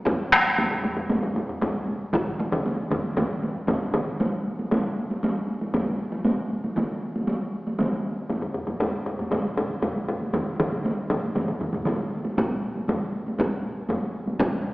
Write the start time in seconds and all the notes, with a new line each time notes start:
0.06 taiko, taiko low-mid, taiko high
0.19 taiko high
0.32 taiko rim, taiko high
0.45 taiko high
0.58 taiko low-mid, taiko high
0.71 taiko low-mid, taiko high
0.84 taiko low-mid, taiko high
0.97 taiko low-mid, taiko high
1.10 taiko low-mid, taiko high
1.23 taiko low-mid, taiko high
1.35 taiko low-mid, taiko high
1.49 taiko low-mid, taiko high
1.61 taiko, taiko low-mid, taiko high
1.74 taiko high
1.87 taiko high
2.00 taiko high
2.13 taiko, taiko low-mid, taiko mid, taiko high
2.27 taiko high
2.39 taiko, taiko high
2.52 taiko low-mid, taiko mid, taiko high
2.66 taiko high
2.79 taiko high
2.91 taiko low-mid, taiko mid, taiko high
3.04 taiko high
3.17 taiko low-mid, taiko mid, taiko high
3.42 taiko high
3.56 taiko high
3.68 taiko, taiko low-mid, taiko mid, taiko high
3.81 taiko high
3.94 taiko low-mid, taiko mid, taiko high
4.08 taiko high
4.20 taiko high
4.59 taiko high
4.71 taiko low-mid, taiko high
5.10 taiko high
5.23 taiko high
5.61 taiko high
5.74 taiko low-mid, taiko high
5.87 taiko high
6.13 taiko high
6.25 taiko high
6.64 taiko high
6.76 taiko mid, taiko high
7.16 taiko high
7.28 taiko high
7.67 taiko high
7.79 taiko mid, taiko high
7.92 taiko high
8.30 taiko low-mid, taiko high
8.42 taiko low-mid
8.54 taiko low-mid
8.67 taiko low-mid, taiko high
8.80 taiko low-mid, taiko high
9.06 taiko low-mid
9.19 taiko low-mid, taiko high
9.32 taiko low-mid, taiko high
9.58 taiko low-mid
9.70 taiko high
9.82 taiko low-mid, taiko high
9.95 taiko high
10.09 taiko low-mid
10.21 taiko high
10.33 taiko low-mid, taiko mid, taiko high
10.60 taiko low-mid, taiko mid
10.72 taiko high
10.85 taiko high
11.10 taiko low-mid, taiko mid
11.23 taiko high
11.35 taiko low-mid, taiko mid, taiko high
11.48 taiko low-mid, taiko mid
11.60 taiko low-mid, taiko mid
11.73 taiko low-mid, taiko mid, taiko high
11.85 taiko low-mid, taiko mid, taiko high
12.25 taiko high
12.38 taiko, taiko high
12.75 taiko high
12.88 taiko low-mid, taiko high
13.27 taiko high
13.38 taiko, taiko high
13.89 taiko low-mid, taiko high
14.02 taiko high
14.27 taiko high
14.40 taiko, taiko high